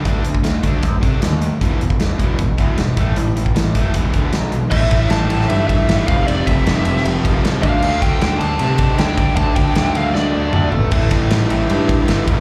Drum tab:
CC |----------------|----------------|----------------|x---------------|
RD |----------------|----------------|----------------|--x-x-x-x-x-x-x-|
HH |x-x-x-x-x-x-x-x-|x-x-x-x-x-x-x-x-|x-x-x-x-x-x-x-x-|----------------|
SD |----o-------o---|----o-------o---|----o-------o---|--o-o--o----o---|
T2 |----------------|----------------|----------------|----------------|
FT |----------------|----------------|----------------|----------------|
BD |o--o--o-o-o-----|o--o--o-o-o---o-|---o--o-o-o-----|o-o-------o---o-|

CC |----------------|x---------------|----------------|x---------------|
RD |x-x-x-x-x-x-x-x-|--x-x-x-x-x-x-x-|x-x-x-x---------|--x-x-x-x-x-x-x-|
HH |----------------|----------------|----------------|----------------|
SD |----o--o----o---|----o-------o---|----o---o-------|--o-o-------o---|
T2 |----------------|----------------|------------o---|----------------|
FT |----------------|----------------|--------------o-|----------------|
BD |--o-------o---o-|--o-------o---o-|o-o-------------|o-o-------o---o-|